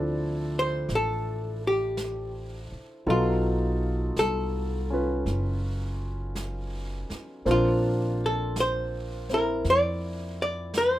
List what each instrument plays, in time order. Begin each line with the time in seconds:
Already playing: upright bass D2, grand piano F3 C4 D4 E4 A4, hollow-body jazz guitar D5
0.59 hollow-body jazz guitar C5
0.89 upright bass A1, brush sweep, snare
0.95 hollow-body jazz guitar A4
1.67 hollow-body jazz guitar G4
1.97 brush sweep, snare, hi-hat pedal
2.72 muted upright bass stroke
3.06 upright bass B1, grand piano F#3 B3 D#4 F4 A4, hollow-body jazz guitar F4, brush sweep
4.16 upright bass C2, hollow-body jazz guitar A4, brush sweep, snare, hi-hat pedal
4.90 grand piano C#4 F4 B4
5.26 upright bass F#1, brush sweep, snare
6.35 brush sweep, snare, hi-hat pedal
7.10 muted upright bass stroke, snare
7.45 upright bass A#1, grand piano A#3 C4 D4 F4 C5, brush sweep, snare
7.51 hollow-body jazz guitar F4
8.26 hollow-body jazz guitar A4
8.56 brush sweep, snare, hi-hat pedal
8.60 hollow-body jazz guitar C5
9.29 grand piano C4, snare
9.33 grand piano E4, hollow-body jazz guitar A#4
9.64 upright bass F2, brush sweep, snare
9.70 hollow-body jazz guitar D5
10.42 hollow-body jazz guitar D5
10.74 hollow-body jazz guitar C5, brush sweep, snare, hi-hat pedal